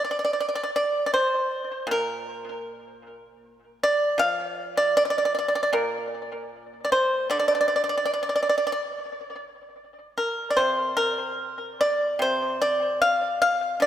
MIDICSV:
0, 0, Header, 1, 2, 480
1, 0, Start_track
1, 0, Tempo, 771208
1, 702, Time_signature, 4, 2, 24, 8
1, 3089, Tempo, 784314
1, 5009, Tempo, 832178
1, 6449, Tempo, 806452
1, 8395, End_track
2, 0, Start_track
2, 0, Title_t, "Pipa"
2, 0, Program_c, 0, 105
2, 0, Note_on_c, 0, 46, 36
2, 28, Note_on_c, 0, 74, 44
2, 60, Note_off_c, 0, 74, 0
2, 68, Note_on_c, 0, 74, 47
2, 107, Note_off_c, 0, 74, 0
2, 118, Note_on_c, 0, 74, 41
2, 145, Note_off_c, 0, 74, 0
2, 153, Note_on_c, 0, 74, 48
2, 195, Note_off_c, 0, 74, 0
2, 207, Note_on_c, 0, 74, 38
2, 245, Note_off_c, 0, 74, 0
2, 252, Note_on_c, 0, 74, 46
2, 291, Note_off_c, 0, 74, 0
2, 302, Note_on_c, 0, 74, 39
2, 339, Note_off_c, 0, 74, 0
2, 345, Note_on_c, 0, 74, 50
2, 383, Note_off_c, 0, 74, 0
2, 395, Note_on_c, 0, 74, 47
2, 431, Note_off_c, 0, 74, 0
2, 450, Note_off_c, 0, 46, 0
2, 472, Note_on_c, 0, 74, 69
2, 653, Note_off_c, 0, 74, 0
2, 662, Note_on_c, 0, 74, 55
2, 703, Note_off_c, 0, 74, 0
2, 707, Note_on_c, 0, 72, 67
2, 1162, Note_off_c, 0, 72, 0
2, 1163, Note_on_c, 0, 46, 48
2, 1191, Note_on_c, 0, 70, 72
2, 2357, Note_off_c, 0, 70, 0
2, 2387, Note_on_c, 0, 74, 81
2, 2599, Note_off_c, 0, 46, 0
2, 2601, Note_on_c, 0, 53, 51
2, 2602, Note_off_c, 0, 74, 0
2, 2610, Note_on_c, 0, 77, 86
2, 2943, Note_off_c, 0, 77, 0
2, 2972, Note_on_c, 0, 74, 75
2, 3083, Note_off_c, 0, 74, 0
2, 3093, Note_on_c, 0, 74, 80
2, 3133, Note_off_c, 0, 74, 0
2, 3143, Note_on_c, 0, 74, 49
2, 3167, Note_off_c, 0, 74, 0
2, 3174, Note_on_c, 0, 74, 56
2, 3215, Note_off_c, 0, 74, 0
2, 3222, Note_on_c, 0, 74, 47
2, 3258, Note_off_c, 0, 74, 0
2, 3266, Note_on_c, 0, 74, 52
2, 3309, Note_off_c, 0, 74, 0
2, 3323, Note_on_c, 0, 74, 44
2, 3341, Note_off_c, 0, 74, 0
2, 3348, Note_on_c, 0, 74, 48
2, 3395, Note_off_c, 0, 74, 0
2, 3408, Note_on_c, 0, 74, 45
2, 3443, Note_off_c, 0, 74, 0
2, 3450, Note_on_c, 0, 74, 54
2, 3489, Note_off_c, 0, 74, 0
2, 3496, Note_on_c, 0, 74, 49
2, 3537, Note_off_c, 0, 74, 0
2, 3554, Note_off_c, 0, 53, 0
2, 3556, Note_on_c, 0, 46, 46
2, 3559, Note_on_c, 0, 70, 63
2, 4020, Note_off_c, 0, 70, 0
2, 4241, Note_on_c, 0, 74, 48
2, 4284, Note_off_c, 0, 74, 0
2, 4287, Note_on_c, 0, 72, 72
2, 4509, Note_off_c, 0, 72, 0
2, 4517, Note_on_c, 0, 50, 44
2, 4522, Note_off_c, 0, 46, 0
2, 4523, Note_on_c, 0, 74, 81
2, 4566, Note_off_c, 0, 74, 0
2, 4577, Note_on_c, 0, 74, 51
2, 4616, Note_off_c, 0, 74, 0
2, 4629, Note_on_c, 0, 74, 59
2, 4664, Note_off_c, 0, 74, 0
2, 4671, Note_on_c, 0, 74, 48
2, 4699, Note_off_c, 0, 74, 0
2, 4707, Note_on_c, 0, 74, 59
2, 4744, Note_off_c, 0, 74, 0
2, 4751, Note_on_c, 0, 74, 49
2, 4792, Note_off_c, 0, 74, 0
2, 4800, Note_on_c, 0, 74, 53
2, 4841, Note_off_c, 0, 74, 0
2, 4848, Note_on_c, 0, 74, 47
2, 4875, Note_off_c, 0, 74, 0
2, 4882, Note_on_c, 0, 74, 52
2, 4925, Note_off_c, 0, 74, 0
2, 4932, Note_on_c, 0, 74, 44
2, 4974, Note_off_c, 0, 74, 0
2, 4981, Note_on_c, 0, 74, 55
2, 5023, Note_off_c, 0, 74, 0
2, 5029, Note_on_c, 0, 74, 45
2, 5068, Note_off_c, 0, 74, 0
2, 5082, Note_on_c, 0, 74, 49
2, 5113, Note_off_c, 0, 74, 0
2, 5120, Note_on_c, 0, 74, 46
2, 5149, Note_off_c, 0, 74, 0
2, 5156, Note_on_c, 0, 74, 51
2, 5190, Note_off_c, 0, 74, 0
2, 5197, Note_on_c, 0, 74, 46
2, 5229, Note_off_c, 0, 74, 0
2, 5236, Note_on_c, 0, 74, 52
2, 5277, Note_off_c, 0, 74, 0
2, 5284, Note_on_c, 0, 74, 47
2, 5328, Note_off_c, 0, 74, 0
2, 5336, Note_on_c, 0, 74, 59
2, 5361, Note_off_c, 0, 74, 0
2, 5368, Note_on_c, 0, 74, 53
2, 5415, Note_off_c, 0, 74, 0
2, 5965, Note_off_c, 0, 50, 0
2, 6206, Note_on_c, 0, 70, 55
2, 6392, Note_off_c, 0, 70, 0
2, 6396, Note_on_c, 0, 74, 49
2, 6431, Note_on_c, 0, 72, 72
2, 6442, Note_on_c, 0, 48, 45
2, 6444, Note_off_c, 0, 74, 0
2, 6665, Note_off_c, 0, 72, 0
2, 6669, Note_on_c, 0, 70, 72
2, 7142, Note_off_c, 0, 70, 0
2, 7169, Note_on_c, 0, 74, 73
2, 7391, Note_off_c, 0, 48, 0
2, 7398, Note_off_c, 0, 74, 0
2, 7398, Note_on_c, 0, 48, 51
2, 7414, Note_on_c, 0, 72, 72
2, 7640, Note_off_c, 0, 72, 0
2, 7650, Note_on_c, 0, 74, 77
2, 7877, Note_off_c, 0, 74, 0
2, 7889, Note_on_c, 0, 77, 85
2, 8114, Note_off_c, 0, 77, 0
2, 8128, Note_on_c, 0, 77, 84
2, 8350, Note_off_c, 0, 77, 0
2, 8355, Note_on_c, 0, 50, 50
2, 8360, Note_off_c, 0, 48, 0
2, 8368, Note_on_c, 0, 74, 81
2, 8392, Note_off_c, 0, 74, 0
2, 8395, Note_off_c, 0, 50, 0
2, 8395, End_track
0, 0, End_of_file